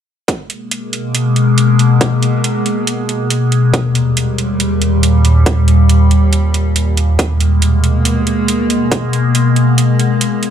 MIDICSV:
0, 0, Header, 1, 3, 480
1, 0, Start_track
1, 0, Key_signature, 5, "minor"
1, 0, Tempo, 431655
1, 315, Time_signature, 4, 2, 24, 8
1, 11679, End_track
2, 0, Start_track
2, 0, Title_t, "Ambient pad"
2, 0, Program_c, 0, 92
2, 312, Note_on_c, 0, 56, 75
2, 313, Note_on_c, 0, 47, 81
2, 313, Note_on_c, 0, 58, 92
2, 4115, Note_off_c, 0, 47, 0
2, 4115, Note_off_c, 0, 56, 0
2, 4115, Note_off_c, 0, 58, 0
2, 4155, Note_on_c, 0, 39, 81
2, 4155, Note_on_c, 0, 46, 73
2, 4155, Note_on_c, 0, 55, 91
2, 7956, Note_off_c, 0, 39, 0
2, 7956, Note_off_c, 0, 46, 0
2, 7956, Note_off_c, 0, 55, 0
2, 7995, Note_on_c, 0, 47, 84
2, 7995, Note_on_c, 0, 56, 78
2, 7995, Note_on_c, 0, 58, 93
2, 11679, Note_off_c, 0, 47, 0
2, 11679, Note_off_c, 0, 56, 0
2, 11679, Note_off_c, 0, 58, 0
2, 11679, End_track
3, 0, Start_track
3, 0, Title_t, "Drums"
3, 313, Note_on_c, 9, 36, 114
3, 315, Note_on_c, 9, 42, 76
3, 425, Note_off_c, 9, 36, 0
3, 426, Note_off_c, 9, 42, 0
3, 554, Note_on_c, 9, 42, 52
3, 665, Note_off_c, 9, 42, 0
3, 794, Note_on_c, 9, 42, 77
3, 905, Note_off_c, 9, 42, 0
3, 1034, Note_on_c, 9, 42, 53
3, 1145, Note_off_c, 9, 42, 0
3, 1274, Note_on_c, 9, 42, 78
3, 1385, Note_off_c, 9, 42, 0
3, 1514, Note_on_c, 9, 42, 51
3, 1625, Note_off_c, 9, 42, 0
3, 1754, Note_on_c, 9, 42, 78
3, 1865, Note_off_c, 9, 42, 0
3, 1994, Note_on_c, 9, 42, 53
3, 2105, Note_off_c, 9, 42, 0
3, 2234, Note_on_c, 9, 36, 118
3, 2234, Note_on_c, 9, 42, 80
3, 2345, Note_off_c, 9, 36, 0
3, 2345, Note_off_c, 9, 42, 0
3, 2475, Note_on_c, 9, 42, 54
3, 2586, Note_off_c, 9, 42, 0
3, 2715, Note_on_c, 9, 42, 77
3, 2826, Note_off_c, 9, 42, 0
3, 2955, Note_on_c, 9, 42, 53
3, 3067, Note_off_c, 9, 42, 0
3, 3195, Note_on_c, 9, 42, 81
3, 3306, Note_off_c, 9, 42, 0
3, 3436, Note_on_c, 9, 42, 51
3, 3547, Note_off_c, 9, 42, 0
3, 3674, Note_on_c, 9, 42, 75
3, 3786, Note_off_c, 9, 42, 0
3, 3914, Note_on_c, 9, 42, 51
3, 4026, Note_off_c, 9, 42, 0
3, 4154, Note_on_c, 9, 36, 114
3, 4155, Note_on_c, 9, 42, 74
3, 4265, Note_off_c, 9, 36, 0
3, 4266, Note_off_c, 9, 42, 0
3, 4394, Note_on_c, 9, 42, 50
3, 4505, Note_off_c, 9, 42, 0
3, 4635, Note_on_c, 9, 42, 77
3, 4746, Note_off_c, 9, 42, 0
3, 4875, Note_on_c, 9, 42, 50
3, 4986, Note_off_c, 9, 42, 0
3, 5115, Note_on_c, 9, 42, 75
3, 5226, Note_off_c, 9, 42, 0
3, 5355, Note_on_c, 9, 42, 50
3, 5466, Note_off_c, 9, 42, 0
3, 5595, Note_on_c, 9, 42, 73
3, 5706, Note_off_c, 9, 42, 0
3, 5835, Note_on_c, 9, 42, 52
3, 5946, Note_off_c, 9, 42, 0
3, 6074, Note_on_c, 9, 36, 117
3, 6074, Note_on_c, 9, 42, 74
3, 6185, Note_off_c, 9, 36, 0
3, 6185, Note_off_c, 9, 42, 0
3, 6314, Note_on_c, 9, 42, 50
3, 6426, Note_off_c, 9, 42, 0
3, 6555, Note_on_c, 9, 42, 74
3, 6666, Note_off_c, 9, 42, 0
3, 6794, Note_on_c, 9, 42, 50
3, 6906, Note_off_c, 9, 42, 0
3, 7035, Note_on_c, 9, 42, 72
3, 7146, Note_off_c, 9, 42, 0
3, 7275, Note_on_c, 9, 42, 51
3, 7386, Note_off_c, 9, 42, 0
3, 7515, Note_on_c, 9, 42, 72
3, 7626, Note_off_c, 9, 42, 0
3, 7755, Note_on_c, 9, 42, 51
3, 7866, Note_off_c, 9, 42, 0
3, 7994, Note_on_c, 9, 36, 115
3, 7995, Note_on_c, 9, 42, 70
3, 8105, Note_off_c, 9, 36, 0
3, 8106, Note_off_c, 9, 42, 0
3, 8234, Note_on_c, 9, 42, 47
3, 8345, Note_off_c, 9, 42, 0
3, 8474, Note_on_c, 9, 42, 70
3, 8585, Note_off_c, 9, 42, 0
3, 8714, Note_on_c, 9, 42, 49
3, 8825, Note_off_c, 9, 42, 0
3, 8954, Note_on_c, 9, 42, 73
3, 9065, Note_off_c, 9, 42, 0
3, 9194, Note_on_c, 9, 42, 50
3, 9305, Note_off_c, 9, 42, 0
3, 9434, Note_on_c, 9, 42, 69
3, 9545, Note_off_c, 9, 42, 0
3, 9674, Note_on_c, 9, 42, 49
3, 9785, Note_off_c, 9, 42, 0
3, 9914, Note_on_c, 9, 36, 105
3, 9915, Note_on_c, 9, 42, 69
3, 10025, Note_off_c, 9, 36, 0
3, 10026, Note_off_c, 9, 42, 0
3, 10155, Note_on_c, 9, 42, 47
3, 10266, Note_off_c, 9, 42, 0
3, 10395, Note_on_c, 9, 42, 69
3, 10506, Note_off_c, 9, 42, 0
3, 10634, Note_on_c, 9, 42, 48
3, 10745, Note_off_c, 9, 42, 0
3, 10875, Note_on_c, 9, 42, 72
3, 10986, Note_off_c, 9, 42, 0
3, 11115, Note_on_c, 9, 42, 47
3, 11226, Note_off_c, 9, 42, 0
3, 11354, Note_on_c, 9, 42, 70
3, 11465, Note_off_c, 9, 42, 0
3, 11594, Note_on_c, 9, 42, 48
3, 11679, Note_off_c, 9, 42, 0
3, 11679, End_track
0, 0, End_of_file